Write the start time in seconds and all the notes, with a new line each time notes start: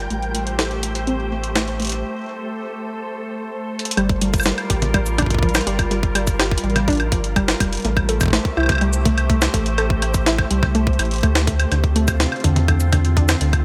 Already playing: G5
0.10 A1 A3 G4 C5, closed hi-hat
0.23 closed hi-hat
0.35 A3, closed hi-hat
0.47 closed hi-hat
0.59 A4, snare, closed hi-hat
0.71 closed hi-hat
0.83 A3, closed hi-hat
0.95 closed hi-hat
1.07 C4, closed hi-hat
1.31 A3
1.44 closed hi-hat
1.56 A3, snare, closed hi-hat
1.68 closed hi-hat
1.80 A3, closed hi-hat
1.82 closed hi-hat
1.85 closed hi-hat
1.87 closed hi-hat
1.89 closed hi-hat
1.92 closed hi-hat
2.04 A4
3.79 closed hi-hat
3.85 closed hi-hat
3.91 closed hi-hat
3.97 G1 G3 F4 A#4, closed hi-hat, high woodblock
4.09 kick, closed hi-hat
4.21 G3, closed hi-hat
4.34 kick, closed hi-hat, cabasa
4.36 cabasa
4.38 cabasa, high woodblock
4.41 cabasa
4.43 G3, snare, closed hi-hat, cabasa
4.58 closed hi-hat, high woodblock
4.70 A1 G4, kick, closed hi-hat
4.82 closed hi-hat, mid tom
4.94 G3, kick, closed hi-hat, high woodblock
5.06 closed hi-hat, cabasa
5.18 D4, kick, closed hi-hat, mid tom, high woodblock
5.22 kick
5.26 kick
5.30 kick, closed hi-hat
5.34 kick
5.39 kick
5.43 F3, kick, closed hi-hat
5.49 closed hi-hat
5.55 snare, closed hi-hat, cabasa, high woodblock
5.61 closed hi-hat
5.67 G1 G3, closed hi-hat
5.79 kick, closed hi-hat, high woodblock
5.91 G3, closed hi-hat
6.03 kick, closed hi-hat
6.15 G3, closed hi-hat, high woodblock
6.27 kick, closed hi-hat, cabasa
6.39 G4, snare, closed hi-hat, high woodblock
6.51 kick, closed hi-hat
6.58 closed hi-hat
6.64 A1 G3, closed hi-hat
6.70 closed hi-hat
6.76 closed hi-hat, mid tom, high woodblock
6.88 D4, kick, closed hi-hat
6.90 closed hi-hat
6.93 closed hi-hat
6.95 closed hi-hat
6.97 closed hi-hat
7.00 closed hi-hat, high woodblock
7.12 G1 F3, kick, closed hi-hat
7.24 closed hi-hat
7.36 G3, kick, closed hi-hat, high woodblock
7.48 snare
7.60 F1 G3, kick, closed hi-hat, high woodblock
7.73 closed hi-hat
7.75 closed hi-hat
7.77 closed hi-hat
7.80 closed hi-hat
7.82 A1 A3 G4, closed hi-hat
7.85 A3 C5, closed hi-hat
7.97 kick, closed hi-hat, high woodblock
8.09 A4, closed hi-hat
8.21 kick, closed hi-hat, cabasa, high woodblock
8.23 kick
8.26 kick
8.28 kick
8.30 A3, kick, snare, closed hi-hat
8.45 kick, closed hi-hat
8.57 C2 E4, high woodblock
8.60 high woodblock
8.63 high woodblock
8.66 closed hi-hat, mid tom, high woodblock
8.69 kick, high woodblock
8.72 high woodblock
8.75 high woodblock
8.78 closed hi-hat, high woodblock
8.81 G3, high woodblock
8.93 closed hi-hat, cabasa
9.05 A3, kick, closed hi-hat, mid tom
9.18 closed hi-hat, high woodblock
9.30 A3, kick, closed hi-hat
9.42 snare, closed hi-hat, cabasa, high woodblock
9.54 A1 A3, kick, closed hi-hat
9.66 closed hi-hat
9.78 A4, closed hi-hat, high woodblock
9.90 kick
10.02 A3, closed hi-hat, high woodblock
10.14 kick, closed hi-hat, cabasa
10.26 E4, snare, closed hi-hat
10.38 kick, closed hi-hat, high woodblock
10.51 C2 G3, closed hi-hat
10.63 kick, mid tom, high woodblock
10.75 A3, closed hi-hat
10.87 kick, closed hi-hat
10.93 closed hi-hat
10.99 A1 E4, closed hi-hat, high woodblock
11.05 closed hi-hat
11.11 closed hi-hat
11.14 closed hi-hat
11.16 closed hi-hat
11.18 closed hi-hat
11.21 D2 A3, kick, closed hi-hat
11.23 closed hi-hat, high woodblock
11.35 snare, closed hi-hat
11.47 A3, kick, closed hi-hat
11.60 closed hi-hat, high woodblock
11.72 D2 D3 C4 F4, closed hi-hat, high woodblock
11.84 kick, closed hi-hat
11.96 A3, closed hi-hat
12.08 kick, closed hi-hat, cabasa, high woodblock
12.20 C3, snare, closed hi-hat
12.32 closed hi-hat, high woodblock
12.36 closed hi-hat
12.40 closed hi-hat
12.44 E2 D3, kick, closed hi-hat
12.56 closed hi-hat, mid tom
12.68 D3, kick, closed hi-hat, high woodblock
12.80 closed hi-hat, cabasa
12.92 D3, kick, closed hi-hat, mid tom, high woodblock
13.05 closed hi-hat
13.17 D4, kick, closed hi-hat
13.29 snare, closed hi-hat, cabasa, high woodblock
13.41 D2 D3, closed hi-hat
13.53 kick, closed hi-hat, high woodblock